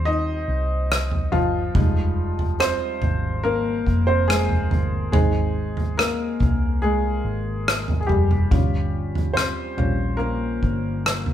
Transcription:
Already playing: fingered electric bass D#2, upright piano G3 C4 D#4 C5
0.05 upright piano D#4 D#5
0.48 fingered electric bass C2
0.92 cross-stick
1.11 floor tom
1.32 fingered electric bass G1, upright piano F3 F4, floor tom
1.74 fingered electric bass F1, upright piano G3 G#3 D#4, kick, floor tom
2.39 floor tom
2.60 upright piano C4 C5, cross-stick
3.01 fingered electric bass G#1, floor tom
3.43 upright piano A#3 A#4
3.86 fingered electric bass F1, kick
4.07 upright piano C4 C5
4.28 upright piano G#3 G#4, cross-stick
4.49 floor tom
4.70 fingered electric bass G1, floor tom
5.12 fingered electric bass G#1, upright piano G#3 C4 D#4 G#4, floor tom
5.77 floor tom
5.97 upright piano A#3 A#4, cross-stick
6.40 fingered electric bass C2, kick, floor tom
6.82 upright piano G#3 G#4
7.25 fingered electric bass G#1
7.68 cross-stick
7.88 floor tom
8.00 upright piano G#4
8.07 fingered electric bass F1, upright piano G3 G4, floor tom
8.31 floor tom
8.50 fingered electric bass G1, upright piano G3 C#4 F4, kick, floor tom
9.15 floor tom
9.34 upright piano C4 C5, cross-stick
9.77 fingered electric bass A#1, upright piano G3 C#4 F4, floor tom
10.17 upright piano A#3 A#4
10.62 fingered electric bass G1, kick
11.06 cross-stick
11.26 floor tom

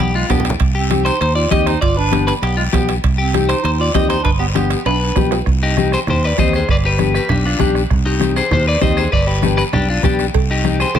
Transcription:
0.00 fingered electric bass B1, clarinet B3, clean electric guitar G4, bombo rim, high timbale
0.14 clarinet G#3, clean electric guitar F4
0.29 fingered electric bass B1, clarinet B3, nylon-string guitar B3 D4 G4, clean electric guitar G4, bombo low, bombo rim, low conga, high timbale, low timbale, short guiro
0.40 low conga
0.45 bombo rim, high timbale, short guiro
0.50 low conga
0.60 fingered electric bass C2, bombo low, bombo rim, high conga, high timbale, long guiro
0.75 clarinet C4, clean electric guitar G4
0.90 nylon-string guitar C4 D#4 G4, bombo rim, high conga, high timbale, short guiro
1.05 clarinet D#4, clean electric guitar C5, bombo rim, high timbale, short guiro
1.20 fingered electric bass D#2, clarinet D#4, clean electric guitar C5, bombo rim, high conga, high timbale, long guiro
1.35 clarinet F4, clean electric guitar D5
1.50 fingered electric bass D#2, nylon-string guitar C4 D#4 G4, clarinet G4, clean electric guitar D#5, bombo low, bombo rim, high conga, high timbale, short guiro
1.66 clarinet D#4, clean electric guitar C5, bombo rim, high timbale, short guiro
1.81 fingered electric bass G1, clarinet F4, clean electric guitar D5, bombo low, bombo rim, high conga, high timbale, long guiro
1.97 clarinet D4, clean electric guitar B4
2.11 nylon-string guitar B3 D4 G4, bombo rim, high conga, high timbale, short guiro
2.27 clarinet D4, clean electric guitar B4, bombo rim, high timbale, short guiro
2.42 fingered electric bass B1, clarinet B3, clean electric guitar G4, bombo rim, high timbale, long guiro
2.57 clarinet G#3, clean electric guitar F4
2.72 fingered electric bass B1, nylon-string guitar B3 D4 G4, clarinet B3, clean electric guitar G4, bombo low, bombo rim, high conga, high timbale, low timbale, short guiro
2.89 bombo rim, high timbale, short guiro
3.04 fingered electric bass C2, bombo low, bombo rim, high conga, high timbale, long guiro
3.18 clarinet C4, clean electric guitar G4
3.34 nylon-string guitar C4 D#4 G4, bombo rim, high conga, high timbale, short guiro
3.49 clarinet D#4, clean electric guitar C5, bombo rim, high timbale, short guiro
3.63 fingered electric bass D#2, clarinet D#4, clean electric guitar C5, bombo rim, high conga, high timbale, long guiro
3.79 clarinet F4, clean electric guitar D5
3.94 fingered electric bass D#2, nylon-string guitar C4 D#4 G4, clarinet G4, clean electric guitar D#5, bombo low, bombo rim, high conga, high timbale, low timbale, short guiro
4.09 clarinet D#4, clean electric guitar C5, bombo rim, high timbale, short guiro
4.23 fingered electric bass G1, clarinet D4, clean electric guitar B4, bombo low, bombo rim, high conga, high timbale, long guiro
4.40 clarinet B3, clean electric guitar G4
4.54 nylon-string guitar B3 D4 G4, clarinet B3, clean electric guitar G4, bombo rim, high conga, high timbale, short guiro
4.70 bombo rim, high timbale, short guiro
4.85 fingered electric bass B1, clarinet D4, clean electric guitar B4, bombo rim, high conga, high timbale, long guiro
5.16 fingered electric bass B1, nylon-string guitar B3 D4 G4, bombo low, bombo rim, high conga, low timbale, short guiro
5.31 bombo rim, low timbale, short guiro
5.46 fingered electric bass C2, bombo low, bombo rim, high conga, long guiro
5.63 clean electric guitar D#4 G4
5.77 nylon-string guitar C4 D#4 G4, bombo rim, high conga, short guiro
5.92 clean electric guitar G#4 C5, bombo rim, short guiro
6.07 fingered electric bass D#2, clean electric guitar G4 C5, bombo rim, high conga, low conga, long guiro
6.24 clean electric guitar B4 D5
6.38 fingered electric bass D#2, nylon-string guitar C4 D#4 G4, clean electric guitar C5 D#5, bombo low, bombo rim, high conga, short guiro
6.53 clean electric guitar G#4 C5, bombo rim, short guiro
6.68 fingered electric bass G1, clean electric guitar B4 D5, bombo low, bombo rim, high conga, long guiro
6.85 clean electric guitar G4 B4
6.98 nylon-string guitar B3 D4 G4, bombo rim, high conga, short guiro
7.15 clean electric guitar G4 B4, bombo rim, short guiro
7.29 fingered electric bass B1, clean electric guitar D4 G4, bombo rim, high conga, low conga, long guiro
7.46 clean electric guitar D4 F4
7.58 fingered electric bass B1, nylon-string guitar B3 D4 G4, clean electric guitar D4 G4, bombo low, bombo rim, high conga, low conga, short guiro
7.75 bombo rim, short guiro
7.90 fingered electric bass C2, bombo low, bombo rim, high conga, low conga, long guiro
8.05 clean electric guitar D#4 G4
8.19 nylon-string guitar C4 D#4 G4, bombo rim, high conga, short guiro
8.36 clean electric guitar G#4 C5, bombo rim, short guiro
8.51 fingered electric bass D#2, clean electric guitar G4 C5, bombo rim, high conga, low conga, long guiro
8.67 clean electric guitar B4 D5
8.81 fingered electric bass D#2, nylon-string guitar C4 D#4 G4, clean electric guitar C5 D#5, bombo low, bombo rim, high conga, low conga, short guiro
8.97 clean electric guitar G#4 C5, bombo rim, short guiro
9.12 fingered electric bass G1, clean electric guitar B4 D5, bombo low, bombo rim, high conga, long guiro
9.27 clean electric guitar G4 B4
9.42 nylon-string guitar B3 D4 G4, bombo rim, high conga, short guiro
9.57 clean electric guitar G4 B4, bombo rim, short guiro
9.73 fingered electric bass B1, clean electric guitar D4 G4, bombo rim, high conga, low conga, long guiro
9.90 clean electric guitar D4 F4
10.03 fingered electric bass B1, nylon-string guitar B3 D4 G4, clean electric guitar D4 G4, bombo low, bombo rim, high conga, low conga, short guiro
10.19 bombo rim, short guiro
10.34 fingered electric bass C2, bombo low, bombo rim, cowbell, high conga, long guiro
10.51 clean electric guitar D#4 G4
10.64 nylon-string guitar C4 D#4 G4, bombo rim, high conga, short guiro
10.80 clean electric guitar G#4 C5, bombo rim, short guiro
10.95 fingered electric bass D#2, clean electric guitar G4 C5, bombo rim, cowbell, high conga, low conga, long guiro

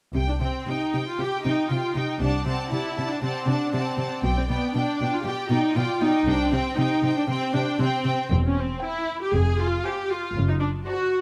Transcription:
0.14 double bass section C2, cello section C3, violin section G5
0.29 viola section D4
0.40 cello section C3, viola section C4, violin section G5
0.66 cello section C3, viola section D#4, violin section G5
0.93 cello section C3, violin section G5
1.08 viola section F4
1.19 cello section C3, viola section G4, violin section G5
1.44 cello section C3, viola section D#4, violin section G5
1.69 cello section C3, viola section F4, violin section G5
1.94 cello section C3, viola section D#4, violin section G5
2.21 double bass section C2, cello section C3, viola section D4, violin section D5 F#5 A5
2.46 cello section C3, viola section C4, violin section D5 F#5 A5
2.72 cello section C3, viola section E4, violin section D5 F#5 A5
2.97 cello section C3, violin section D5 F#5 A5
3.10 viola section D4
3.22 cello section C3, viola section C4, violin section D5 F#5 A5
3.46 cello section C3, viola section D4, violin section D5 F#5 A5
3.73 cello section C3, viola section C4, violin section D5 F#5 A5
3.97 cello section C3, violin section D5 F#5 A5
4.23 double bass section B1, cello section B2, violin section D5 G5
4.37 viola section C4
4.49 cello section B2, viola section B3, violin section D5 G5
4.74 cello section B2, viola section D4, violin section D5 G5
5.00 cello section B2, violin section D5 G5
5.14 viola section F4
5.24 cello section B2, viola section G4, violin section D5 G5
5.49 cello section B2, viola section D#4, violin section D5 G5
5.75 cello section B2, viola section F4, violin section D5 G5
6.01 cello section B2, viola section D#4, violin section D5 G5
6.26 double bass section C2, cello section C3, viola section D4, violin section C5 G5
6.51 cello section C3, viola section C4, violin section C5 G5
6.77 cello section C3, viola section D#4, violin section C5 G5
7.02 cello section C3, violin section C5 G5
7.17 viola section D4
7.28 cello section C3, viola section C4, violin section C5 G5
7.54 cello section C3, viola section D4, violin section C5 G5
7.79 cello section C3, viola section C4, violin section C5 G5
8.04 cello section C3, violin section C5 G5
8.31 double bass section E1, cello section E2
8.45 viola section C#4
8.57 viola section C4
8.80 viola section E4, violin section C5 G5
9.22 viola section G4
9.33 double bass section F1, cello section F2, viola section G#4
9.60 viola section F4
9.84 viola section G4, violin section C5 F5 G#5
10.11 viola section F4
10.36 double bass section F#1, cello section F#2
10.50 viola section D#4
10.60 viola section D4
10.87 viola section F#4, violin section C5 D5 A5

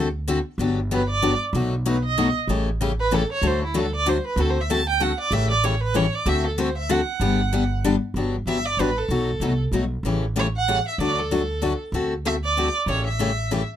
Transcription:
Already playing: upright bass D2
0.28 steel-string acoustic guitar D3 A3 C4 F#4 A4
0.58 upright bass G1, steel-string acoustic guitar D3 F#3 B3 D4 G4
0.91 steel-string acoustic guitar D3 F#3 B3 D4 G4, violin B4
1.10 violin D5
1.22 steel-string acoustic guitar D3 F#3 B3 D4 G4
1.53 upright bass B1, steel-string acoustic guitar B2 F#3 A3 D#4 F#4
1.86 steel-string acoustic guitar B2 F#3 A3 D#4 F#4, violin B4
2.05 violin D#5
2.18 steel-string acoustic guitar B2 F#3 A3 D#4 F#4
2.47 upright bass A1, steel-string acoustic guitar C#3 E3 A3 C#4 G4
2.81 steel-string acoustic guitar C#3 E3 A3 C#4 G4
3.00 violin B4
3.11 steel-string acoustic guitar C#3 E3 A3 C#4 G4, violin A4
3.33 violin C#5
3.42 upright bass D2, steel-string acoustic guitar D3 F#3 A3 D4 F#4
3.47 violin C5
3.64 violin E4
3.74 steel-string acoustic guitar D3 F#3 A3 D4 F#4, violin A4
3.96 violin D5
4.06 steel-string acoustic guitar D3 F#3 A3 D4 F#4, violin C5
4.27 violin B4
4.36 upright bass D2, steel-string acoustic guitar D3 A3 C4 F#4 A4
4.41 violin A4
4.50 violin C5
4.61 violin E5
4.70 steel-string acoustic guitar D3 A3 C4 F#4 A4, violin A5
4.89 violin G5
5.00 steel-string acoustic guitar D3 A3 C4 F#4 A4, violin F#5
5.20 violin D5
5.31 upright bass A1, steel-string acoustic guitar C#3 E3 A3 C#4 G4, violin E5
5.51 violin D5
5.64 steel-string acoustic guitar C#3 E3 A3 C#4 G4, violin C#5
5.83 violin B4
5.94 steel-string acoustic guitar C#3 E3 A3 C#4 G4, violin C#5
6.15 violin D5
6.26 upright bass D2, steel-string acoustic guitar D3 A3 C4 F#4 A4, violin E5
6.47 violin A4
6.58 steel-string acoustic guitar D3 A3 C4 F#4 A4, violin C5
6.78 violin E5
6.89 steel-string acoustic guitar D3 A3 C4 F#4 A4, violin F#5
7.20 upright bass G1, steel-string acoustic guitar D3 G3 B3 D4 G4
7.53 steel-string acoustic guitar D3 G3 B3 D4 G4
7.84 steel-string acoustic guitar D3 G3 B3 D4 G4
8.14 upright bass G1, steel-string acoustic guitar D3 F#3 B3 D4 G4
8.46 upright bass G1, steel-string acoustic guitar D3 F#3 B3 D4 G4, violin E5
8.66 violin D5
8.77 upright bass A1, steel-string acoustic guitar D3 F#3 B3 D4 G4, violin B4
8.98 violin A4
9.09 upright bass B1, steel-string acoustic guitar B2 F#3 A3 D#4 F#4
9.40 upright bass C2, steel-string acoustic guitar B2 F#3 A3 D#4 F#4
9.72 upright bass B1, steel-string acoustic guitar B2 F#3 A3 D#4 F#4
10.03 upright bass A1, steel-string acoustic guitar C#3 E3 A3 C#4 G4
10.36 steel-string acoustic guitar C#3 E3 A3 C#4 G4, violin C#5
10.57 violin F#5
10.68 steel-string acoustic guitar C#3 E3 A3 C#4 G4
10.88 violin E5
10.98 upright bass D2, steel-string acoustic guitar D3 F#3 A3 D4 F#4, violin D5
11.19 violin A4
11.31 steel-string acoustic guitar D3 F#3 A3 D4 F#4
11.62 steel-string acoustic guitar D3 F#3 A3 D4 F#4
11.92 upright bass D2, steel-string acoustic guitar D3 A3 C4 F#4 A4
12.25 steel-string acoustic guitar D3 A3 C4 F#4 A4, violin E5
12.44 violin D5
12.57 steel-string acoustic guitar D3 A3 C4 F#4 A4
12.86 upright bass A1, steel-string acoustic guitar C#3 E3 A3 C#4 G4, violin C#5
13.07 violin E5
13.19 steel-string acoustic guitar C#3 E3 A3 C#4 G4
13.51 steel-string acoustic guitar C#3 E3 A3 C#4 G4

